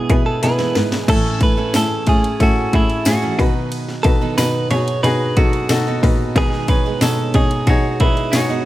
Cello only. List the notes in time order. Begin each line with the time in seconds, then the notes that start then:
0.10 B2
0.43 B2
0.75 G#2
1.08 A2
1.41 A2
1.75 A2
2.07 A2
2.40 A2
2.74 A2
3.06 A2
3.39 B2
4.05 B2
4.38 B2
4.71 B2
5.04 B2
5.37 B2
5.70 B2
6.03 A#2
6.36 B2
6.69 B2
7.01 B2
7.35 B2
7.67 B2
8.00 B2
8.33 B2